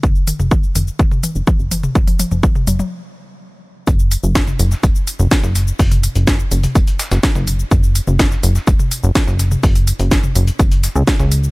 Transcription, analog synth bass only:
0.03 0.33 F#1 loud
0.39 0.69 F#1 medium
0.75 0.91 F#1 loud
0.99 1.07 E1 medium
1.36 1.43 F#1 loud
1.59 1.89 F#1 loud
1.95 2.25 F#1 loud
2.31 2.61 F#1 medium
2.67 2.83 F#1 medium
3.87 4.17 F#1 loud
4.23 4.53 F#1 medium
4.60 4.75 F#1 loud
4.83 4.91 E1 medium
5.20 5.27 F#1 loud
5.44 5.73 F#1 loud
5.79 6.09 F#1 loud
6.16 6.45 F#1 medium
6.51 6.67 F#1 medium
6.75 6.83 E1 medium
7.12 7.19 F#1 loud
7.35 7.65 F#1 loud
7.71 8.01 F#1 loud
8.07 8.37 F#1 medium
8.43 8.59 F#1 loud
8.67 8.75 E1 medium
9.04 9.11 F#1 loud
9.27 9.57 F#1 loud
9.63 9.93 F#1 loud
10.00 10.29 F#1 medium
10.35 10.51 F#1 medium
10.59 10.89 F#1 medium
10.96 11.03 C#2 loud
11.20 11.49 C#2 medium

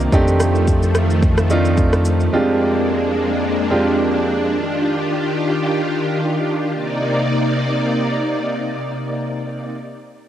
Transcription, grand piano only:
0.00 0.14 A#3 medium
0.00 0.13 C4 medium
0.00 0.13 D4 medium
0.00 0.13 D#4 medium
0.00 0.14 F4 medium
0.12 1.01 A3 medium
0.12 1.01 C4 medium
0.12 1.01 D4 medium
0.12 1.01 D#4 medium
0.12 1.02 G4 loud
1.50 2.17 A3 medium
1.50 2.17 C4 medium
1.50 2.17 D4 medium
1.50 2.18 D#4 medium
1.50 2.18 F4 medium
2.33 3.21 F2 medium
2.33 3.21 G#3 medium
2.33 3.21 C4 medium
2.33 3.21 D4 medium
2.33 3.22 F4 medium
2.33 3.22 G4 medium
3.70 4.37 F2 medium
3.70 4.37 G#3 medium
3.70 4.37 C4 medium
3.70 4.38 D4 medium
3.70 4.38 F4 medium
3.70 4.38 G4 medium

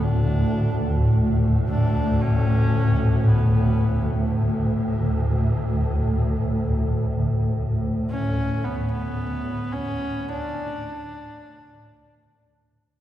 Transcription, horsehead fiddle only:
0.03 1.12 D4 medium
1.69 2.23 D4 medium
2.22 3.29 C#4 medium
3.28 4.08 B3 medium
8.10 8.65 C#4 medium
8.64 8.91 B3 medium
8.91 9.74 B3 medium
9.73 10.30 C#4 loud
10.28 12.50 D4 loud

